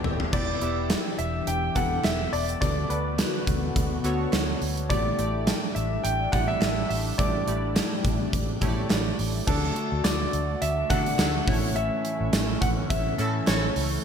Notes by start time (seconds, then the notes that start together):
Already playing: E3 B3 E4 G4 A4 D5 G5 A5
0.04 D#1 E5, floor tom
0.20 floor tom
0.33 E1 E3 B3 D4 E4 G4 D5, kick, crash
0.61 E1 B3 E4 G4 E5, closed hi-hat
0.90 snare, clap, closed hi-hat
1.18 E1 E5, closed hi-hat
1.47 E1 G5, closed hi-hat
1.75 E1 B3 E4 G4 A4 F#5, kick, clap, closed hi-hat
2.04 E1 E5, snare, clap, closed hi-hat
2.33 E1 D5, open hi-hat
2.49 closed hi-hat
2.61 D2 D3 B3 F#4 A4 D5, kick, closed hi-hat
2.90 D2 B3 F#4 A4 B4 D5, closed hi-hat
3.19 snare, clap, closed hi-hat
3.47 D2, kick, closed hi-hat
3.76 D2, kick, closed hi-hat
4.04 D2 B3 F#4 A4 C#5, clap, closed hi-hat
4.33 D2, snare, clap, closed hi-hat
4.61 D2, open hi-hat
4.77 closed hi-hat
4.89 A1 A2 G3 A3 D4 E4 G4 D5, kick, closed hi-hat
5.18 A1 A3 E4 G4 D5, closed hi-hat
5.47 snare, clap, closed hi-hat
5.75 A1 E5, closed hi-hat
6.03 A1 G5, closed hi-hat
6.32 A1 A3 E4 G4 D5 F#5, kick, clap, closed hi-hat
6.48 E5
6.61 A1, snare, clap, closed hi-hat
6.89 A1 E5, open hi-hat
7.18 A1 A2 A3 E4 G4 D5, kick, closed hi-hat
7.47 A1 A3 E4 G4 D5, closed hi-hat
7.76 snare, clap, closed hi-hat
8.05 A1, kick, closed hi-hat
8.33 A1, kick, closed hi-hat
8.61 A1 A3 E4 G4 C#5, kick, clap, closed hi-hat
8.69 D5
8.90 A1, snare, clap, closed hi-hat
9.19 A1, open hi-hat
9.47 D2 D3 A3 D4 F#4 A4 D5, kick, crash
9.76 closed hi-hat
9.92 D2
10.04 D2 D5, snare, clap, closed hi-hat, tambourine
10.33 D2, closed hi-hat
10.62 D2 E5, closed hi-hat
10.90 D3 F#3 A3 D4 F#4 A4 D5 F#5, kick, clap, closed hi-hat
11.06 closed hi-hat
11.19 D2 F#3 D4 A4, snare, clap, closed hi-hat, tambourine
11.47 A1 A2 E3 A3 C#4 E4 C#5, kick, open hi-hat
11.76 E5, closed hi-hat
12.05 closed hi-hat
12.20 A1
12.33 A1, snare, clap, closed hi-hat, tambourine
12.61 A1 F#5, kick, closed hi-hat
12.90 A1 E5, kick, closed hi-hat
13.18 A2 E3 A3 C#4 E4 A4, clap, closed hi-hat
13.47 A1 E3 C#4 A4 C#5, snare, clap, closed hi-hat, tambourine
13.76 C#2, open hi-hat